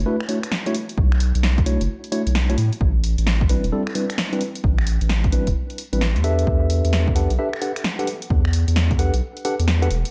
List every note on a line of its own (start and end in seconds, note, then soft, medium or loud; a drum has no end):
0.06 0.15 A3 medium
0.06 0.15 D4 medium
0.06 0.15 E4 medium
0.06 0.15 F#4 medium
0.06 0.15 B4 medium
0.20 finger snap medium
0.29 0.38 A3 medium
0.29 0.38 D4 medium
0.29 0.38 E4 medium
0.29 0.38 F#4 medium
0.29 0.38 C#5 medium
0.29 open hi-hat loud
0.43 finger snap medium
0.43 closed hi-hat medium
0.52 snare loud
0.66 0.75 A3 medium
0.66 0.75 D4 medium
0.66 0.75 E4 medium
0.66 0.75 F#4 medium
0.66 0.75 C#5 medium
0.66 closed hi-hat soft
0.75 open hi-hat loud
0.89 closed hi-hat medium
0.98 1.33 B1 medium
0.98 kick loud
1.12 finger snap medium
1.20 open hi-hat loud
1.35 1.78 B1 loud
1.35 closed hi-hat medium
1.43 snare loud
1.58 kick loud
1.58 closed hi-hat soft
1.66 1.81 A3 medium
1.66 1.81 D4 medium
1.66 1.81 E4 medium
1.66 1.81 F#4 medium
1.66 1.81 C#5 medium
1.66 open hi-hat loud
1.81 1.88 F#1 medium
1.81 closed hi-hat medium
2.04 closed hi-hat soft
2.12 2.21 A3 medium
2.12 2.21 D4 medium
2.12 2.21 E4 medium
2.12 2.21 F#4 medium
2.12 2.21 C#5 medium
2.12 open hi-hat loud
2.27 2.56 B1 medium
2.27 closed hi-hat medium
2.35 snare loud
2.50 2.55 A3 medium
2.50 2.55 D4 medium
2.50 2.55 E4 medium
2.50 2.55 F#4 medium
2.50 2.55 C#5 medium
2.50 closed hi-hat soft
2.58 2.71 A2 loud
2.58 open hi-hat loud
2.73 closed hi-hat medium
2.81 3.16 A1 loud
2.81 kick loud
3.04 open hi-hat medium
3.18 3.61 A1 loud
3.18 closed hi-hat medium
3.27 snare loud
3.41 kick loud
3.49 3.64 G3 medium
3.49 3.64 C4 medium
3.49 3.64 D4 medium
3.49 3.64 E4 medium
3.49 3.64 B4 medium
3.49 open hi-hat medium
3.64 3.71 E1 medium
3.64 closed hi-hat medium
3.72 3.82 G3 medium
3.72 3.82 C4 medium
3.72 3.82 D4 medium
3.72 3.82 E4 medium
3.72 3.82 A4 medium
3.87 finger snap medium
3.95 4.04 G3 medium
3.95 4.04 C4 medium
3.95 4.05 D4 medium
3.95 4.04 E4 medium
3.95 4.04 B4 medium
3.95 open hi-hat loud
4.10 finger snap medium
4.10 closed hi-hat medium
4.18 snare loud
4.33 4.41 G3 medium
4.33 4.41 C4 medium
4.33 4.41 D4 medium
4.33 4.41 E4 medium
4.33 4.41 B4 medium
4.33 closed hi-hat soft
4.41 open hi-hat loud
4.55 closed hi-hat medium
4.64 4.99 A1 medium
4.64 kick loud
4.78 finger snap medium
4.87 open hi-hat loud
5.01 5.45 A1 loud
5.01 closed hi-hat medium
5.09 snare loud
5.24 kick loud
5.24 closed hi-hat soft
5.32 5.47 G3 medium
5.32 5.47 C4 medium
5.32 5.47 D4 medium
5.32 5.47 E4 medium
5.32 5.47 B4 medium
5.32 open hi-hat medium
5.47 5.55 E1 medium
5.47 kick medium
5.47 closed hi-hat medium
5.70 closed hi-hat soft
5.78 open hi-hat loud
5.93 6.17 A1 medium
5.93 6.01 G3 medium
5.93 6.01 C4 medium
5.93 6.01 D4 medium
5.93 6.01 E4 medium
5.93 6.01 B4 medium
5.93 closed hi-hat medium
6.01 snare loud
6.16 6.46 E2 medium
6.16 closed hi-hat soft
6.24 7.14 D4 medium
6.24 7.14 G4 medium
6.24 7.14 A4 medium
6.24 7.14 B4 medium
6.24 7.14 E5 medium
6.24 open hi-hat loud
6.39 closed hi-hat medium
6.47 6.82 E2 loud
6.47 kick loud
6.70 open hi-hat medium
6.85 7.28 E2 loud
6.85 closed hi-hat medium
6.93 snare loud
7.08 kick loud
7.16 7.31 D4 medium
7.16 7.31 G4 medium
7.16 7.31 A4 medium
7.16 7.31 B4 medium
7.16 7.30 F#5 medium
7.16 open hi-hat medium
7.30 7.38 B1 medium
7.30 closed hi-hat medium
7.39 7.48 D4 medium
7.39 7.48 G4 medium
7.39 7.48 A4 medium
7.39 7.48 B4 medium
7.39 7.48 E5 medium
7.53 finger snap medium
7.62 7.71 D4 medium
7.62 7.71 G4 medium
7.62 7.71 A4 medium
7.62 7.71 B4 medium
7.62 7.71 F#5 medium
7.62 open hi-hat medium
7.76 finger snap medium
7.76 closed hi-hat medium
7.84 snare loud
7.99 8.07 D4 medium
7.99 8.07 G4 medium
7.99 8.07 A4 medium
7.99 8.07 B4 medium
7.99 8.07 F#5 medium
7.99 closed hi-hat soft
8.07 open hi-hat loud
8.22 closed hi-hat medium
8.30 8.65 E2 loud
8.30 kick loud
8.45 finger snap medium
8.53 open hi-hat loud
8.68 9.11 E2 loud
8.68 closed hi-hat medium
8.76 snare loud
8.91 kick loud
8.91 closed hi-hat soft
8.99 9.14 D4 medium
8.99 9.14 G4 medium
8.99 9.14 A4 medium
8.99 9.14 B4 medium
8.99 9.14 F#5 medium
8.99 open hi-hat loud
9.14 9.21 B1 medium
9.14 closed hi-hat medium
9.37 closed hi-hat soft
9.45 9.54 D4 medium
9.45 9.54 G4 medium
9.45 9.54 A4 medium
9.45 9.54 B4 medium
9.45 9.54 F#5 medium
9.45 open hi-hat loud
9.59 9.89 E2 medium
9.59 closed hi-hat medium
9.68 snare loud
9.82 9.88 D4 medium
9.82 9.88 G4 medium
9.82 9.88 A4 medium
9.82 9.88 B4 medium
9.82 9.88 F#5 medium
9.82 closed hi-hat medium
9.91 10.04 E1 loud
9.91 open hi-hat loud
10.05 closed hi-hat medium